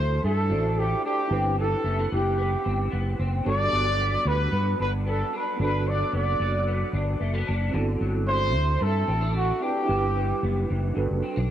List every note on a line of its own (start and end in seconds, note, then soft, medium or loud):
0.00 0.19 D2 medium
0.00 1.32 D3 medium
0.00 0.23 A3 medium
0.00 0.50 D4 medium
0.00 0.47 E4 medium
0.00 0.47 F#4 medium
0.00 0.48 A4 medium
0.00 0.21 C5 loud
0.00 0.49 C5 medium
0.24 0.52 G2 loud
0.24 0.78 A3 medium
0.24 0.81 A4 medium
0.50 0.93 A1 medium
0.50 1.04 D4 medium
0.50 1.28 E4 soft
0.50 1.31 F#4 soft
0.50 1.31 A4 soft
0.50 1.32 C5 soft
0.79 1.37 A3 medium
0.79 1.05 G4 medium
1.05 1.32 D4 medium
1.05 1.55 G4 medium
1.28 1.74 G1 loud
1.28 3.40 D4 medium
1.28 3.40 E4 medium
1.28 3.41 G4 medium
1.32 2.63 C4 medium
1.32 3.42 B4 medium
1.59 2.11 E3 medium
1.59 2.08 A4 medium
1.84 2.06 F#1 medium
1.84 1.99 A3 medium
1.99 2.37 B3 soft
2.12 2.55 F#1 medium
2.12 3.51 E3 medium
2.12 3.16 G4 medium
2.38 2.90 B3 medium
2.64 2.87 G1 medium
2.64 3.18 C4 medium
2.90 3.14 F#1 medium
2.90 4.00 B3 medium
3.19 3.40 F#1 medium
3.19 3.46 C4 medium
3.43 3.67 G1 medium
3.43 5.59 G2 medium
3.43 5.54 B3 medium
3.43 5.55 D4 medium
3.43 4.79 D4 medium
3.43 5.56 F#4 medium
3.47 5.57 A4 medium
3.47 4.29 D5 loud
3.72 4.15 G1 medium
3.72 4.27 F#3 medium
4.00 4.52 B3 medium
4.25 4.47 D2 medium
4.25 5.86 F#3 soft
4.25 4.80 B4 loud
4.52 4.74 G2 loud
4.52 5.05 B3 medium
4.79 5.23 G1 medium
4.79 5.33 D4 medium
4.79 4.92 B4 medium
5.06 6.12 B3 medium
5.06 5.32 A4 medium
5.33 5.60 D4 medium
5.33 5.59 B4 medium
5.56 6.02 G1 loud
5.56 7.68 B3 medium
5.56 7.69 D4 medium
5.56 7.70 F#4 medium
5.60 6.93 D4 medium
5.60 7.71 A4 medium
5.60 5.90 B4 medium
5.87 6.41 F#3 medium
5.87 6.14 D5 medium
6.13 6.35 F#1 medium
6.13 6.66 B3 medium
6.13 6.91 D5 medium
6.40 6.83 F#1 medium
6.40 8.01 F#3 medium
6.67 7.20 B3 medium
6.93 7.15 G1 medium
6.93 7.47 D4 medium
7.20 7.42 F#1 medium
7.20 7.34 A3 medium
7.34 7.79 B3 soft
7.47 7.69 F#1 loud
7.47 7.73 D4 medium
7.71 7.95 G1 loud
7.71 9.88 D3 medium
7.71 9.56 C4 medium
7.71 9.07 D4 medium
7.71 9.57 E4 medium
7.71 9.58 F#4 medium
7.76 9.59 A4 medium
8.01 8.55 G1 medium
8.01 8.54 F#3 medium
8.27 8.79 A3 medium
8.27 8.84 C5 loud
8.55 8.76 D2 medium
8.80 9.03 G2 medium
8.80 9.33 A3 medium
8.80 9.36 A4 medium
9.07 9.51 A1 medium
9.07 9.21 C4 medium
9.21 9.60 D4 medium
9.35 9.94 A3 soft
9.35 9.64 F#4 medium
9.61 9.88 C4 soft
9.61 9.88 D4 medium
9.61 9.86 E4 soft
9.61 9.88 F#4 soft
9.61 10.69 G4 medium
9.61 9.89 B4 medium
9.85 10.32 G1 medium
9.85 10.92 D4 medium
9.85 10.93 E4 medium
9.85 10.93 G4 medium
9.89 10.94 G2 medium
9.89 11.01 C4 medium
9.89 10.94 B4 medium
10.16 10.68 E3 medium
10.43 10.64 F#1 loud
10.43 11.26 B3 medium
10.69 10.91 F#1 loud
10.69 11.01 E3 medium
10.93 11.07 G1 medium
10.93 11.51 G2 medium
10.93 11.51 D4 medium
10.93 11.51 F#4 medium
10.93 11.51 A4 medium
10.98 11.51 B4 medium
11.11 11.21 F#1 medium
11.23 11.36 C4 medium
11.36 11.47 B1 medium
11.36 11.51 D4 medium